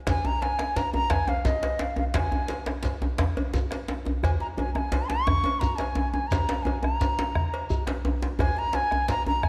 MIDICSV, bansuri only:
0, 0, Header, 1, 2, 480
1, 0, Start_track
1, 0, Tempo, 346821
1, 95, Time_signature, 12, 3, 24, 8
1, 13131, End_track
2, 0, Start_track
2, 0, Title_t, "Bansuri"
2, 0, Program_c, 0, 73
2, 126, Note_on_c, 0, 80, 104
2, 361, Note_on_c, 0, 82, 95
2, 381, Note_off_c, 0, 80, 0
2, 584, Note_on_c, 0, 80, 85
2, 605, Note_off_c, 0, 82, 0
2, 1065, Note_on_c, 0, 82, 89
2, 1086, Note_off_c, 0, 80, 0
2, 1289, Note_off_c, 0, 82, 0
2, 1298, Note_on_c, 0, 82, 103
2, 1541, Note_on_c, 0, 80, 91
2, 1561, Note_off_c, 0, 82, 0
2, 1777, Note_on_c, 0, 77, 88
2, 1798, Note_off_c, 0, 80, 0
2, 2016, Note_on_c, 0, 75, 77
2, 2037, Note_off_c, 0, 77, 0
2, 2510, Note_on_c, 0, 77, 73
2, 2531, Note_off_c, 0, 75, 0
2, 2738, Note_off_c, 0, 77, 0
2, 2746, Note_on_c, 0, 77, 79
2, 2829, Note_off_c, 0, 77, 0
2, 2994, Note_on_c, 0, 80, 75
2, 3656, Note_off_c, 0, 80, 0
2, 5873, Note_on_c, 0, 80, 74
2, 5956, Note_off_c, 0, 80, 0
2, 6104, Note_on_c, 0, 82, 83
2, 6187, Note_off_c, 0, 82, 0
2, 6342, Note_on_c, 0, 80, 68
2, 6553, Note_off_c, 0, 80, 0
2, 6562, Note_on_c, 0, 82, 78
2, 6611, Note_on_c, 0, 80, 85
2, 6625, Note_off_c, 0, 82, 0
2, 7034, Note_on_c, 0, 85, 96
2, 7055, Note_off_c, 0, 80, 0
2, 7746, Note_on_c, 0, 82, 85
2, 7767, Note_off_c, 0, 85, 0
2, 7973, Note_on_c, 0, 80, 80
2, 7994, Note_off_c, 0, 82, 0
2, 8465, Note_off_c, 0, 80, 0
2, 8474, Note_on_c, 0, 80, 73
2, 8683, Note_on_c, 0, 82, 80
2, 8704, Note_off_c, 0, 80, 0
2, 9174, Note_on_c, 0, 80, 70
2, 9195, Note_off_c, 0, 82, 0
2, 9416, Note_off_c, 0, 80, 0
2, 9424, Note_on_c, 0, 82, 81
2, 10826, Note_off_c, 0, 82, 0
2, 11624, Note_on_c, 0, 80, 92
2, 11883, Note_on_c, 0, 82, 102
2, 11904, Note_off_c, 0, 80, 0
2, 12108, Note_on_c, 0, 80, 98
2, 12128, Note_off_c, 0, 82, 0
2, 12583, Note_off_c, 0, 80, 0
2, 12599, Note_on_c, 0, 82, 101
2, 12813, Note_off_c, 0, 82, 0
2, 12831, Note_on_c, 0, 82, 97
2, 13061, Note_on_c, 0, 80, 88
2, 13082, Note_off_c, 0, 82, 0
2, 13131, Note_off_c, 0, 80, 0
2, 13131, End_track
0, 0, End_of_file